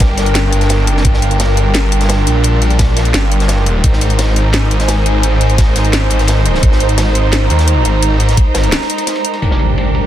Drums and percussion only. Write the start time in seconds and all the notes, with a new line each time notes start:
0.00 kick, snare, closed hi-hat, ride
0.17 snare, closed hi-hat, ride
0.26 closed hi-hat, ride
0.35 snare, closed hi-hat, ride
0.52 closed hi-hat, ride
0.61 snare, closed hi-hat
0.69 snare, closed hi-hat, ride
0.87 closed hi-hat, ride
0.97 snare
1.05 kick, closed hi-hat, ride
1.14 snare
1.22 closed hi-hat, ride
1.31 closed hi-hat
1.40 snare, closed hi-hat, ride
1.57 closed hi-hat, ride
1.75 snare, closed hi-hat, ride
1.92 closed hi-hat, ride
2.00 snare, closed hi-hat
2.09 snare, closed hi-hat, ride
2.19 ride
2.27 closed hi-hat, ride
2.43 closed hi-hat, ride
2.62 closed hi-hat, ride
2.71 closed hi-hat, ride
2.79 kick, snare, closed hi-hat, ride
2.97 snare, closed hi-hat, ride
3.05 closed hi-hat, ride
3.14 snare, closed hi-hat
3.32 closed hi-hat, ride
3.40 snare, closed hi-hat
3.48 snare, closed hi-hat, ride
3.58 ride
3.66 closed hi-hat, ride
3.84 kick, closed hi-hat, ride
3.93 snare
4.01 closed hi-hat, ride
4.10 closed hi-hat
4.19 snare, closed hi-hat, ride
4.36 closed hi-hat, ride
4.54 snare, closed hi-hat, ride
4.71 closed hi-hat, ride
4.80 snare, closed hi-hat
4.88 snare, closed hi-hat, ride
4.97 ride
5.06 closed hi-hat, ride
5.23 closed hi-hat, ride
5.41 closed hi-hat, ride
5.50 closed hi-hat, ride
5.58 kick, snare, closed hi-hat, ride
5.76 snare, closed hi-hat, ride
5.84 closed hi-hat, ride
5.93 snare, closed hi-hat, ride
6.10 closed hi-hat, ride
6.19 snare, closed hi-hat
6.27 snare, closed hi-hat, ride
6.45 closed hi-hat, ride
6.54 snare
6.63 kick, closed hi-hat, ride
6.72 snare
6.80 closed hi-hat, ride
6.89 closed hi-hat
6.98 snare, closed hi-hat, ride
7.15 closed hi-hat, ride
7.33 snare, closed hi-hat, ride
7.50 closed hi-hat, ride
7.59 snare, closed hi-hat
7.68 closed hi-hat, ride
7.85 closed hi-hat, ride
8.03 closed hi-hat, ride
8.20 closed hi-hat, ride
8.29 snare, closed hi-hat
8.37 kick, closed hi-hat, ride
8.54 snare, closed hi-hat, ride
8.64 closed hi-hat
8.72 snare, closed hi-hat
8.81 snare
8.90 closed hi-hat, ride
8.98 closed hi-hat, ride
9.07 snare, closed hi-hat
9.15 ride
9.25 closed hi-hat
9.33 ride
9.42 ride
9.51 snare
9.59 closed hi-hat, ride
9.78 ride
9.94 closed hi-hat, ride